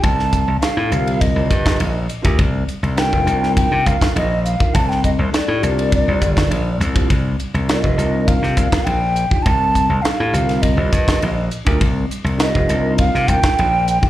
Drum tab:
RD |x-x-x-xxx-x-x-xx|x-xxx-x-x-xxx-x-|x-x-x-xxx-x-x-xx|x-xxx-x-x-xxx-x-|
HH |--p---p---p---p-|--p---p---p---p-|--p---p---p---p-|--p---p---p---p-|
SD |-o--o------o----|----o--o---o----|-o--o------o----|----o----o-o----|
BD |o-o-----o-oo---o|o----o--o-oo---o|o-o-----o-oo---o|o----o--o-oo---o|

RD |x-x-x-xxx-x-x-xx|x-xxx-x-x-xxx-x-|
HH |--p---p---p---p-|--p---p---p---p-|
SD |----o--o---o----|----o----o-o----|
BD |o-o-----o-oo---o|o----o--o-oo---o|